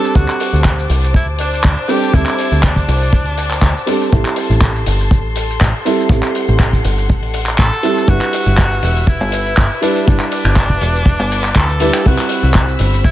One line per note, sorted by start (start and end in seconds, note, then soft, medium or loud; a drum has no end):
0.00 0.12 G3 loud
0.00 0.12 C4 medium
0.00 0.12 D4 medium
0.00 0.13 A4 loud
0.00 0.17 A4 loud
0.00 4.08 C5 medium
0.00 6.07 A5 medium
0.00 4.08 D6 medium
0.04 shaker medium
0.15 0.26 D2 loud
0.15 0.88 F#4 loud
0.15 kick loud
0.15 shaker medium
0.28 clap soft
0.28 shaker soft
0.40 open hi-hat loud
0.40 shaker medium
0.53 0.86 D2 medium
0.53 shaker medium
0.64 kick loud
0.64 clap loud
0.64 shaker medium
0.79 shaker soft
0.90 1.27 C2 medium
0.90 open hi-hat loud
0.90 shaker medium
1.04 shaker medium
1.14 1.27 E4 loud
1.14 kick loud
1.14 shaker medium
1.27 1.60 D2 medium
1.39 1.91 D4 loud
1.39 open hi-hat loud
1.39 shaker medium
1.54 shaker medium
1.64 1.75 D2 medium
1.64 finger snap medium
1.64 kick loud
1.64 clap loud
1.64 open hi-hat medium
1.64 shaker medium
1.88 2.10 G3 loud
1.88 2.11 C4 medium
1.88 2.11 D4 medium
1.88 2.16 G4 loud
1.88 2.11 A4 loud
1.88 open hi-hat loud
1.88 shaker medium
2.03 shaker medium
2.12 2.24 D2 loud
2.12 3.84 G3 medium
2.12 3.84 C4 medium
2.12 3.84 D4 medium
2.12 2.65 E4 loud
2.12 3.85 A4 medium
2.12 kick loud
2.12 shaker medium
2.26 clap soft
2.26 shaker soft
2.39 open hi-hat loud
2.39 shaker medium
2.52 2.84 D2 medium
2.52 shaker soft
2.63 3.88 D4 medium
2.63 kick loud
2.63 clap loud
2.63 shaker medium
2.76 kick medium
2.76 shaker medium
2.88 3.26 C2 medium
2.88 open hi-hat loud
2.88 shaker medium
3.02 shaker medium
3.13 kick loud
3.13 shaker medium
3.26 3.59 D2 medium
3.26 open hi-hat medium
3.38 open hi-hat loud
3.38 shaker medium
3.51 clap soft
3.51 shaker soft
3.62 3.73 D2 medium
3.62 kick loud
3.62 clap loud
3.62 shaker medium
3.77 shaker soft
3.86 4.09 G3 medium
3.86 4.09 C4 medium
3.86 4.09 D4 medium
3.86 4.09 A4 loud
3.86 open hi-hat loud
3.86 shaker medium
4.01 shaker medium
4.11 4.23 A1 loud
4.11 5.82 G3 medium
4.11 5.83 C4 medium
4.11 5.83 E4 medium
4.11 8.05 A4 medium
4.11 5.83 A4 medium
4.11 8.05 C6 medium
4.11 kick loud
4.11 shaker medium
4.25 clap soft
4.25 shaker soft
4.36 open hi-hat loud
4.36 shaker medium
4.50 4.83 A1 medium
4.50 shaker soft
4.61 kick loud
4.61 clap loud
4.61 shaker medium
4.76 shaker soft
4.86 5.25 G1 medium
4.86 open hi-hat loud
4.86 shaker medium
5.01 shaker medium
5.11 kick loud
5.11 shaker medium
5.25 5.57 A1 medium
5.36 open hi-hat loud
5.36 shaker medium
5.50 shaker medium
5.60 5.71 A1 medium
5.60 finger snap medium
5.60 kick loud
5.60 clap loud
5.60 open hi-hat medium
5.60 shaker medium
5.85 6.07 G3 loud
5.85 6.08 C4 medium
5.85 6.08 E4 medium
5.85 6.08 A4 loud
5.85 open hi-hat loud
5.85 shaker medium
6.01 shaker medium
6.09 6.20 A1 loud
6.09 7.81 A4 medium
6.09 8.07 F#5 medium
6.09 kick loud
6.09 shaker medium
6.23 clap soft
6.23 shaker soft
6.35 open hi-hat loud
6.35 shaker medium
6.48 6.81 A1 medium
6.48 shaker soft
6.59 kick loud
6.59 clap loud
6.59 shaker medium
6.73 kick medium
6.73 shaker medium
6.84 7.22 G1 medium
6.84 open hi-hat loud
6.84 shaker medium
6.98 shaker soft
7.09 kick loud
7.09 shaker medium
7.22 7.55 A1 medium
7.22 open hi-hat medium
7.34 open hi-hat loud
7.34 shaker loud
7.46 clap soft
7.46 shaker soft
7.58 7.70 A1 medium
7.58 8.10 A4 loud
7.58 kick loud
7.58 clap loud
7.58 shaker medium
7.73 shaker soft
7.83 8.05 G3 loud
7.83 8.05 C4 medium
7.83 8.06 E4 medium
7.83 8.06 A4 loud
7.83 open hi-hat loud
7.83 shaker medium
7.98 shaker medium
8.07 8.19 G1 loud
8.07 9.78 G3 medium
8.07 9.79 D4 medium
8.07 9.79 E4 medium
8.07 9.09 F#4 loud
8.07 9.79 B4 medium
8.07 12.01 B4 medium
8.07 12.01 E5 medium
8.07 10.05 E6 medium
8.07 kick loud
8.07 shaker medium
8.21 clap soft
8.21 shaker soft
8.33 open hi-hat loud
8.33 shaker medium
8.46 8.79 G1 medium
8.46 shaker soft
8.58 kick loud
8.58 clap loud
8.58 shaker medium
8.72 shaker soft
8.82 9.20 E1 medium
8.82 open hi-hat loud
8.82 shaker medium
8.97 shaker medium
9.07 9.82 E4 loud
9.07 kick loud
9.07 shaker medium
9.20 9.54 G1 medium
9.32 open hi-hat loud
9.32 shaker loud
9.46 shaker medium
9.57 9.68 G1 medium
9.57 finger snap medium
9.57 kick loud
9.57 clap loud
9.57 open hi-hat medium
9.57 shaker medium
9.81 10.04 G3 loud
9.81 10.04 D4 medium
9.81 10.06 D4 medium
9.81 10.04 E4 medium
9.81 10.04 B4 loud
9.81 open hi-hat loud
9.81 shaker medium
9.96 shaker medium
10.06 10.18 G1 loud
10.06 11.77 G3 medium
10.06 11.78 D4 medium
10.06 11.58 D4 loud
10.06 11.78 E4 medium
10.06 11.78 B4 medium
10.06 12.03 D6 medium
10.06 kick loud
10.06 shaker medium
10.20 clap soft
10.20 shaker soft
10.32 open hi-hat loud
10.32 shaker medium
10.45 10.78 G1 medium
10.45 finger snap medium
10.45 shaker soft
10.56 kick loud
10.56 clap loud
10.56 shaker medium
10.70 kick medium
10.70 shaker soft
10.81 11.19 E1 medium
10.81 open hi-hat loud
10.81 shaker medium
10.96 shaker medium
11.06 kick loud
11.06 shaker medium
11.19 11.52 G1 medium
11.19 open hi-hat medium
11.19 shaker soft
11.31 open hi-hat loud
11.31 shaker medium
11.44 clap soft
11.44 shaker soft
11.55 11.89 D2 medium
11.55 12.08 A4 loud
11.55 kick loud
11.55 clap loud
11.55 shaker medium
11.69 shaker soft
11.80 12.02 G3 medium
11.80 12.02 D4 medium
11.80 12.03 E4 medium
11.80 12.03 B4 loud
11.80 open hi-hat loud
11.80 shaker medium
11.93 finger snap medium
11.93 shaker medium
12.04 12.16 C2 loud
12.04 13.11 G3 medium
12.04 13.11 C4 medium
12.04 13.11 E4 medium
12.04 12.78 F#4 loud
12.04 13.11 B5 medium
12.04 13.11 E6 medium
12.04 kick loud
12.04 crash medium
12.04 shaker medium
12.18 clap soft
12.18 shaker soft
12.29 open hi-hat loud
12.29 shaker medium
12.43 12.76 C2 medium
12.43 shaker soft
12.54 kick loud
12.54 clap loud
12.54 shaker medium
12.69 shaker soft
12.79 13.11 G1 medium
12.79 open hi-hat loud
12.79 shaker medium
12.94 shaker soft
13.04 13.11 E4 loud
13.04 kick loud
13.04 shaker medium